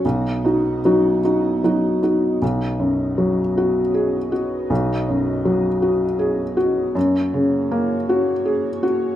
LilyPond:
<<
  \new Staff \with { instrumentName = "Analog synth pad" } { \time 3/4 \key b \major \tempo 4 = 79 <b fis' dis''>2. | <b fis' dis''>2.~ | <b fis' dis''>2. | <ais fis' cis''>2. | }
  \new Staff \with { instrumentName = "Felt piano" } { \time 3/4 \key b \major b,,8 <dis' fis'>8 <fis dis' fis'>8 <dis' fis'>8 <fis dis' fis'>8 <dis' fis'>8 | b,,8 fis,8 fis8 fis'8 gis'8 fis'8 | b,,8 fis,8 fis8 fis'8 gis'8 fis'8 | fis,8 cis8 ais8 fis'8 gis'8 fis'8 | }
>>